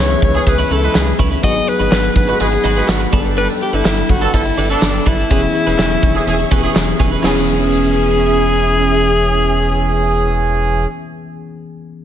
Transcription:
Already playing: E3 B3 C#4 G#4 B4 C#5 E5 C#6
0.00 C#2
0.10 muted clean electric guitar stroke, closed hi-hat
0.22 C#2 C#5, kick, closed hi-hat
0.34 E3 C#4 G#4, muted clean electric guitar stroke, closed hi-hat
0.47 C#2 E3 C#4 G#4 B4, muted clean electric guitar stroke, kick, closed hi-hat
0.58 C#4 E4 B4, closed hi-hat
0.70 C#2 C#4 E4 A4 B4, closed hi-hat
0.83 G#3 E4 B4, muted clean electric guitar stroke, closed hi-hat
0.95 C#2 G#4, muted clean electric guitar stroke, snare, clap, tambourine
1.07 muted clean electric guitar stroke, closed hi-hat
1.19 C#2 C#4 E4 B4, kick, closed hi-hat
1.31 C#4 E4 B4, closed hi-hat
1.42 G#1 F#3 B3 D#4 F#4 G#4 B4 D#5 F#5 B5, kick, closed hi-hat
1.55 muted clean electric guitar stroke, closed hi-hat
1.67 B4, muted clean electric guitar stroke, closed hi-hat
1.79 G#1 D#4 F#4 B4, closed hi-hat
1.91 G#1, muted clean electric guitar stroke, snare, clap, tambourine
2.04 muted clean electric guitar stroke, closed hi-hat
2.16 G#1 B4, kick, closed hi-hat
2.28 G#3 F#4 B4, muted clean electric guitar stroke, closed hi-hat
2.40 G#1 G#3 F#4 G#4 B4, muted clean electric guitar stroke, closed hi-hat
2.52 muted clean electric guitar stroke, closed hi-hat
2.64 G#1 D#4 F#4 B4, closed hi-hat
2.76 G#3 D#4 F#4 B4, closed hi-hat
2.88 G#1 F#4, snare, clap, tambourine
3.00 muted clean electric guitar stroke, closed hi-hat
3.12 G1 G3 B3 D4 G#4 A4 B4 G5 B5, kick, closed hi-hat
3.20 A4
3.25 D4 A4 B4, closed hi-hat
3.37 D4 A4 B4, closed hi-hat
3.49 muted clean electric guitar stroke, closed hi-hat
3.61 G4, muted clean electric guitar stroke, closed hi-hat
3.73 G1 D4 E4 A4 B4, closed hi-hat
3.85 G1, muted clean electric guitar stroke, snare, clap, tambourine
3.97 muted clean electric guitar stroke, closed hi-hat
4.09 G1 F#4, kick, closed hi-hat
4.21 D3 B3 A4, muted clean electric guitar stroke, closed hi-hat
4.34 G1 D3 B3 E4 A4, muted clean electric guitar stroke, kick, closed hi-hat
4.46 muted clean electric guitar stroke, closed hi-hat
4.58 G1 D4 A4 B4, closed hi-hat
4.70 D3 B3 D4 A4 B4, closed hi-hat
4.82 G1, snare, clap, tambourine
4.94 muted clean electric guitar stroke, closed hi-hat
5.06 G1 D4 E4 A4 B4, kick, closed hi-hat
5.18 D4 A4 B4, closed hi-hat
5.30 E1 E3 B3 C#4 G#4 B4 E5 C#6, kick, closed hi-hat
5.43 muted clean electric guitar stroke, closed hi-hat
5.55 muted clean electric guitar stroke, closed hi-hat
5.67 E1 C#4 G#4 B4, closed hi-hat
5.78 E1, muted clean electric guitar stroke, snare, clap, tambourine
5.91 muted clean electric guitar stroke, closed hi-hat
6.03 E1, kick, closed hi-hat
6.15 E3 C#4 G#4, muted clean electric guitar stroke, closed hi-hat
6.27 E1 E3 C#4 G#4, muted clean electric guitar stroke, closed hi-hat
6.39 muted clean electric guitar stroke, closed hi-hat
6.51 E1 E3 B3 C#4 G4 G#4 B4, kick, closed hi-hat
6.58 G#4
6.63 E3 C#4 G#4 B4, closed hi-hat
6.75 E1, snare, clap, tambourine
6.87 muted clean electric guitar stroke, closed hi-hat
6.99 E1 C#4 G#4 B4, kick, open hi-hat
7.11 C#4 G#4 B4, closed hi-hat
7.22 E1 E3 B3 C#4 G#4 E5, snare, clap, crash
7.27 G#4 B4

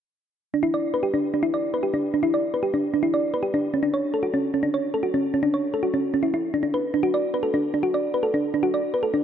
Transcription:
0.54 D4
0.63 E4
0.74 D5
0.94 B4
1.03 G4
1.14 D4
1.34 D4
1.43 E4
1.54 D5
1.74 B4
1.83 G4
1.94 D4
2.14 D4
2.23 E4
2.34 D5
2.54 B4
2.63 G4
2.74 D4
2.94 D4
3.03 E4
3.14 D5
3.34 B4
3.43 G4
3.54 D4
3.74 C#4
3.83 D4
3.94 C#5
4.14 A4
4.23 F#4
4.34 C#4
4.54 C#4
4.63 D4
4.74 C#5
4.94 A4
5.03 F#4
5.14 C#4
5.34 C#4
5.43 D4
5.54 C#5
5.74 A4
5.83 F#4
5.94 C#4
6.14 C#4
6.23 E4
6.34 E4
6.54 D4
6.63 D4
6.74 B4
6.94 D4
7.03 F#4
7.14 D5
7.34 B4
7.43 A4
7.54 D4
7.74 D4
7.83 F#4
7.94 D5
8.14 B4
8.23 A4
8.34 D4
8.54 D4
8.63 F#4
8.74 D5
8.94 B4
9.03 A4
9.14 D4

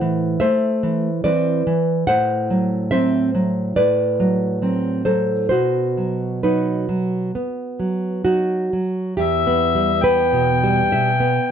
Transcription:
Already playing: A2 C5 F#5
0.01 E3
0.40 A3 C5 E5
0.83 E3
1.24 E3 C4 B4 D5
1.67 E3
2.07 A2 C5 F#5
2.50 F#3
2.91 F#3 C4 C5 E5
3.35 F#3
3.76 A2 B4 D5
4.20 F#3
4.62 F#3 C4
5.05 F#3 A4 C5
5.49 B2 F#4 C5
5.97 F#3
6.43 F#3 D#4 F#4 B4
6.89 F#3
7.35 B3
7.79 F#3
8.25 F#3 D#4 F#4
8.73 F#3
9.17 E2 G4 E5
9.47 B3
9.75 G3
10.03 B3 B4 G5
10.33 B2
10.64 G3
10.92 B2 E5
11.20 B3

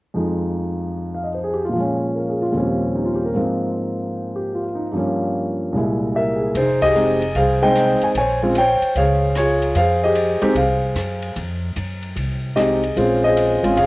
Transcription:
0.14 F2 F3 G#3 D#4
1.14 F5
1.24 D#5
1.34 C5
1.44 G#4
1.54 G4
1.65 F4
1.69 A#2 F3
1.77 G#3 C#4
2.16 A#4
2.29 G#4
2.42 F4
2.52 D#2 A#2 F3 G3
2.56 C4 C#4
2.96 D#4
3.05 F4
3.16 G4
3.25 A#4
3.35 G#2 F3 A#3 C4
4.36 G4
4.54 F4
4.75 D#4
4.92 G2 F3 A#3
4.97 C#4
5.72 C2 A#2 G#3
5.77 E4
6.15 G4 A#4 E5
6.36 G#4
6.55 F1 D#4 G#4 C5, ride
6.82 G4 G#4 D#5, kick, ride
6.95 G#3 C4 D#4 G4, hi-hat pedal
7.22 ride
7.35 C2 G#4 C5 F5, ride
7.62 G#3 C4 D#4 C5 D#5 G5
7.76 cross-stick, hi-hat pedal, ride
8.01 G#5, muted upright bass stroke, ride
8.14 A#1 C#5 G#5, ride
8.18 C5
8.43 G#3 C4 C#4 F4
8.55 C5 C#5 G5, hi-hat pedal, ride
8.81 muted upright bass stroke, ride
8.95 C#2 G#4 C#5 F5, ride
9.35 F4 G#4 C#5, cross-stick, hi-hat pedal, ride
9.62 ride
9.75 F2 G#4 C5 F5, ride
10.04 G4 G#4 D#5
10.15 hi-hat pedal, ride
10.42 G#3 C4 D#4 G4, muted upright bass stroke, ride
10.54 C2 G#4 C5 F5, ride
10.95 F#2, cross-stick, hi-hat pedal, ride
11.22 ride
11.36 F2, ride
11.76 F#2, hi-hat pedal, ride
12.03 ride
12.16 C2, ride
12.56 G#3 C4 D#4 G4 G#4 D#5, cross-stick, hi-hat pedal, ride
12.83 ride
12.96 A#1 G#3 C4 C#4 F4 G#4 C5, ride
13.24 G#4 C5 D#5
13.37 hi-hat pedal, ride
13.63 A1 G#3 C4 C#4 F4, ride
13.76 F1 G#4 C#5 F5, ride

